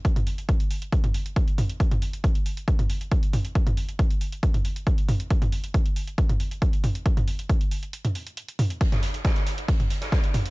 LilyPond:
\new DrumStaff \with { instrumentName = "Drums" } \drummode { \time 4/4 \tempo 4 = 137 <hh bd>16 <hh toml>16 hho16 hh16 <hh bd>16 hh16 hho16 hh16 <hh bd>16 <hh toml>16 hho16 hh16 <hh bd>16 hh16 <hho toml>16 hh16 | <hh bd>16 <hh toml>16 hho16 hh16 <hh bd>16 hh16 hho16 hh16 <hh bd>16 <hh toml>16 hho16 hh16 <hh bd>16 hh16 <hho toml>16 hh16 | <hh bd>16 <hh toml>16 hho16 hh16 <hh bd>16 hh16 hho16 hh16 <hh bd>16 <hh toml>16 hho16 hh16 <hh bd>16 hh16 <hho toml>16 hh16 | <hh bd>16 <hh toml>16 hho16 hh16 <hh bd>16 hh16 hho16 hh16 <hh bd>16 <hh toml>16 hho16 hh16 <hh bd>16 hh16 <hho toml>16 hh16 |
<hh bd>16 <hh toml>16 hho16 hh16 <hh bd>16 hh16 hho16 hh16 hh16 <hh toml>16 hho16 hh16 hh16 hh16 <hho toml>16 hh16 | <hh bd>16 <hh sn toml>16 <hh hho>16 hh16 <hh bd sn>16 <hh sn>16 <hh hho>16 hh16 <hh bd>16 <hh toml>16 <hh hho>16 <hh sn>16 <hh bd sn>16 hh16 <hh hho toml>16 hh16 | }